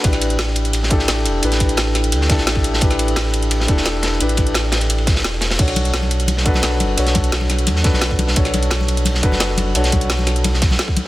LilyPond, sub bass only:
\new Staff \with { instrumentName = "Sub bass" } { \clef bass \time 4/4 \key b \minor \tempo 4 = 173 a,,2. a,,8 e,,8 | a,,2 d,8. a,,4~ a,,16 | a,,2~ a,,8 e,,8 e,,4 | a,,2. e,,4 |
b,,2. b,,8 fis,,8 | b,,2 e,8. b,,4~ b,,16 | b,,2~ b,,8 fis,,8 fis,,4 | b,,2. r4 | }